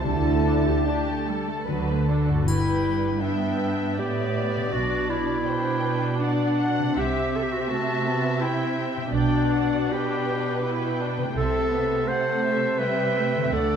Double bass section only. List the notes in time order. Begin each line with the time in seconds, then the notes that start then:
0.03 D2
1.67 D2
2.46 G1
4.74 B1
6.97 C2
9.13 B1
11.35 C2
13.53 D2